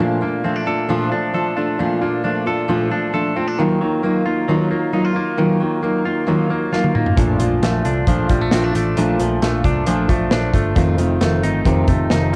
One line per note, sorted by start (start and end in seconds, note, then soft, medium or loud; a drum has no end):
0.00 0.22 A#2 medium
0.00 0.22 F3 medium
0.00 0.22 A3 medium
0.00 0.22 A#3 medium
0.00 0.21 D4 medium
0.00 0.20 F4 medium
0.00 0.44 F4 medium
0.21 0.43 A3 soft
0.21 2.01 A#3 medium
0.21 0.44 D4 medium
0.21 0.44 F4 medium
0.44 0.67 F3 medium
0.44 0.67 A3 medium
0.44 0.56 C4 soft
0.44 0.66 D4 medium
0.44 0.65 F4 medium
0.56 1.11 D4 soft
0.66 0.88 A3 soft
0.66 0.89 D4 soft
0.66 0.89 F4 soft
0.66 1.33 A4 medium
0.89 1.11 A#2 medium
0.89 1.12 F3 medium
0.89 1.12 A3 medium
0.89 1.11 D4 medium
0.89 1.10 F4 loud
1.11 1.33 A3 soft
1.11 1.34 D4 medium
1.11 1.34 F4 medium
1.33 1.56 F3 medium
1.33 1.57 A3 medium
1.33 1.56 D4 medium
1.33 1.56 F4 medium
1.33 2.46 A4 medium
1.57 1.79 A3 soft
1.57 1.79 D4 medium
1.57 1.79 F4 medium
1.79 2.01 A#2 medium
1.79 2.02 F3 medium
1.79 2.02 A3 medium
1.79 2.01 D4 medium
1.79 2.00 F4 medium
2.01 2.23 A3 soft
2.01 4.03 A#3 soft
2.01 2.24 D4 medium
2.01 2.24 F4 medium
2.24 2.46 F3 medium
2.24 2.47 A3 medium
2.24 2.46 D4 medium
2.24 2.45 F4 medium
2.46 2.68 A3 soft
2.46 2.68 D4 soft
2.46 2.69 F4 medium
2.46 3.13 A4 medium
2.68 2.91 A#2 medium
2.68 2.91 F3 medium
2.68 2.91 A3 medium
2.68 2.91 D4 medium
2.68 2.90 F4 medium
2.91 3.13 A3 soft
2.91 3.14 D4 medium
2.91 3.13 F4 medium
3.13 3.36 F3 medium
3.13 3.36 A3 medium
3.13 3.36 D4 medium
3.13 3.35 F4 medium
3.13 3.63 A4 medium
3.36 3.59 A3 soft
3.36 3.48 C4 medium
3.36 3.59 D4 medium
3.36 3.59 F4 medium
3.48 3.63 D4 soft
3.59 3.81 D#3 medium
3.59 3.81 F#3 medium
3.59 3.81 A#3 medium
3.59 3.81 D#4 medium
3.59 3.80 F4 medium
3.81 4.47 F#3 medium
3.81 4.03 A#3 medium
3.81 4.03 D#4 medium
3.81 4.03 F4 medium
4.03 4.26 F#3 medium
4.03 4.26 A#3 medium
4.03 4.25 D#4 medium
4.03 4.24 F4 medium
4.25 4.48 A#3 soft
4.25 4.48 D#4 soft
4.25 4.48 F4 soft
4.48 4.71 D#3 medium
4.48 4.71 F#3 medium
4.48 4.71 A#3 medium
4.48 4.70 D#4 medium
4.48 4.69 F4 medium
4.70 4.92 A#3 soft
4.70 4.93 D#4 soft
4.70 4.93 F4 medium
4.92 5.15 F#3 medium
4.92 5.16 A#3 medium
4.92 5.15 D#4 medium
4.92 5.14 F4 medium
5.04 6.04 F4 medium
5.15 5.37 A#3 soft
5.15 5.37 D#4 soft
5.15 5.38 F4 soft
5.37 5.60 D#3 medium
5.37 5.60 F#3 medium
5.37 5.61 A#3 medium
5.37 5.60 D#4 medium
5.37 5.59 F4 medium
5.60 6.26 F#3 soft
5.60 5.82 A#3 soft
5.60 5.82 D#4 soft
5.60 5.83 F4 medium
5.82 6.05 F#3 medium
5.82 6.05 A#3 medium
5.82 6.04 D#4 medium
5.82 6.03 F4 medium
6.05 6.26 A#3 soft
6.05 6.26 D#4 soft
6.05 6.27 F4 soft
6.27 6.50 D#3 medium
6.27 6.50 F#3 medium
6.27 6.50 A#3 medium
6.27 6.49 D#4 medium
6.27 6.48 F4 medium
6.49 6.72 A#3 medium
6.49 6.72 D#4 medium
6.49 6.72 F4 medium
6.72 6.95 F#3 medium
6.72 6.95 A#3 medium
6.72 6.94 D#4 medium
6.72 6.93 F4 medium
6.72 snare soft
6.84 high tom medium
6.95 7.17 A#3 soft
6.95 7.17 D#4 soft
6.95 7.17 F4 medium
6.95 mid tom medium
7.06 floor tom medium
7.17 7.36 A#1 medium
7.17 7.40 A#2 medium
7.17 7.40 F3 medium
7.17 7.40 A3 medium
7.17 7.39 D4 medium
7.17 7.38 F4 medium
7.17 kick medium
7.17 closed hi-hat medium
7.39 7.58 A#1 medium
7.39 8.07 F3 medium
7.39 7.62 A3 soft
7.39 7.62 D4 medium
7.39 7.62 F4 medium
7.39 closed hi-hat medium
7.62 7.81 A#1 medium
7.62 7.85 F3 medium
7.62 7.85 A3 medium
7.62 7.84 D4 medium
7.62 7.83 F4 medium
7.62 snare medium
7.62 closed hi-hat medium
7.84 8.04 C2 medium
7.84 8.06 A3 soft
7.84 8.07 D4 soft
7.84 8.07 F4 soft
7.84 closed hi-hat medium
8.07 8.26 A#1 medium
8.07 8.29 A#2 medium
8.07 8.30 F3 medium
8.07 8.30 A3 medium
8.07 8.29 D4 medium
8.07 8.28 F4 loud
8.07 kick medium
8.07 closed hi-hat medium
8.29 8.48 A#1 medium
8.29 8.41 G3 medium
8.29 8.51 A3 soft
8.29 8.52 D4 soft
8.29 8.52 F4 medium
8.29 kick medium
8.29 closed hi-hat medium
8.41 8.74 A3 soft
8.51 8.71 A#1 medium
8.51 8.74 F3 medium
8.51 8.75 A3 medium
8.51 8.64 C4 medium
8.51 8.74 D4 medium
8.51 8.73 F4 medium
8.51 snare loud
8.51 closed hi-hat medium
8.64 9.64 D4 medium
8.74 8.93 A1 medium
8.74 8.97 A3 soft
8.74 8.97 D4 medium
8.74 8.97 F4 medium
8.74 closed hi-hat medium
8.97 9.16 A#1 medium
8.97 9.19 A#2 medium
8.97 9.20 F3 medium
8.97 9.20 A3 medium
8.97 9.19 D4 medium
8.97 9.18 F4 medium
8.97 closed hi-hat medium
9.19 9.38 A#1 medium
9.19 9.87 F3 medium
9.19 9.41 A3 soft
9.19 9.42 D4 medium
9.19 9.42 F4 soft
9.19 closed hi-hat medium
9.41 9.60 A#1 medium
9.41 9.64 F3 medium
9.41 9.65 A3 medium
9.41 9.64 D4 medium
9.41 9.63 F4 medium
9.41 snare medium
9.41 closed hi-hat medium
9.64 9.83 C2 medium
9.64 9.86 A3 soft
9.64 9.86 D4 soft
9.64 9.86 F4 medium
9.64 kick medium
9.64 closed hi-hat medium
9.87 10.05 A#1 medium
9.87 10.09 A#2 medium
9.87 10.09 F3 medium
9.87 10.09 A3 medium
9.87 10.09 D4 medium
9.87 10.08 F4 medium
9.87 closed hi-hat medium
10.09 10.27 A#1 loud
10.09 10.31 A3 soft
10.09 10.32 D4 medium
10.09 10.32 F4 medium
10.09 kick medium
10.09 closed hi-hat medium
10.31 10.50 A#1 medium
10.31 10.54 F3 medium
10.31 10.54 A3 medium
10.31 10.54 D4 medium
10.31 10.52 F4 medium
10.31 snare loud
10.31 closed hi-hat medium
10.54 10.72 G1 medium
10.54 10.75 A3 soft
10.54 10.76 D4 soft
10.54 10.75 F4 medium
10.54 kick medium
10.54 closed hi-hat medium
10.75 10.95 F1 medium
10.75 10.98 F2 medium
10.75 10.98 C3 medium
10.75 10.99 D#3 medium
10.75 10.98 A3 medium
10.75 10.98 C4 medium
10.75 10.97 F4 medium
10.75 kick medium
10.75 closed hi-hat medium
10.98 11.17 F1 loud
10.98 11.19 D#3 soft
10.98 11.20 A3 soft
10.98 11.20 C4 medium
10.98 11.21 F4 medium
10.98 closed hi-hat medium
11.21 11.43 F1 medium
11.21 11.43 D#3 medium
11.21 11.43 A3 medium
11.21 11.42 C4 medium
11.21 11.42 F4 medium
11.21 snare loud
11.21 closed hi-hat medium
11.43 11.62 G1 medium
11.43 11.64 D#3 soft
11.43 11.65 A3 soft
11.43 11.65 C4 soft
11.43 12.09 D#4 medium
11.43 11.65 F4 medium
11.43 closed hi-hat medium
11.65 11.84 F1 medium
11.65 11.88 F2 medium
11.65 11.88 C3 medium
11.65 11.88 D#3 medium
11.65 11.88 A3 medium
11.65 11.87 C4 medium
11.65 11.86 F4 medium
11.65 kick medium
11.65 closed hi-hat medium
11.88 12.06 F1 medium
11.88 12.09 D#3 soft
11.88 12.10 A3 medium
11.88 12.11 C4 medium
11.88 12.10 F4 medium
11.88 kick medium
11.88 closed hi-hat medium
12.10 12.33 F1 medium
12.10 12.33 D#3 medium
12.10 12.32 A3 medium
12.10 12.32 C4 medium
12.10 12.36 D#4 medium
12.10 12.31 F4 medium
12.10 snare loud
12.10 closed hi-hat medium
12.32 12.36 F4 medium